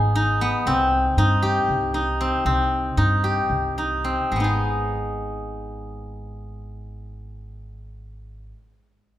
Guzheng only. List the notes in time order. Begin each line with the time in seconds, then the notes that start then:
Already playing: B3 D#4 G#4
0.15 D#4
0.41 B3
0.67 C4
1.18 D#4
1.42 G4
1.94 D#4
2.21 C4
2.46 C4
2.97 D#4
3.24 G4
3.78 D#4
4.04 C4
4.32 G#3
4.36 B3
4.40 D#4 G#4